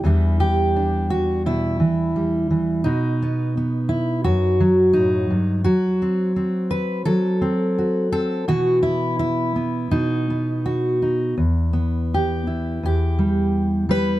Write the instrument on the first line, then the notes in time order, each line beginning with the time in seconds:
steel-string acoustic guitar
0.03 E2 E3 G3 D4 E4
0.40 G4
0.76 D4
1.10 F#4
1.46 B2 E4
1.80 E3
2.16 G3
2.50 E3
2.84 B2 D#4
3.22 B3
3.57 B3
3.89 E4
4.24 F#2 F#4
4.60 F#3
4.93 A2 D#4
5.30 G2
5.64 F#3 F#4
6.02 C4
6.36 C4
6.71 B4
7.05 F#3 A4
7.41 C4
7.78 F#4
8.12 C4 A4
8.48 B2 E3 B3 F#4
8.83 E4
9.19 E4
9.56 B3
9.91 B2 D#4
10.30 B3
10.66 F#4
11.02 D#4
11.37 E2
11.73 B3
12.14 G4
12.47 E4
12.83 E2 G4
13.19 G3
13.89 G3 B4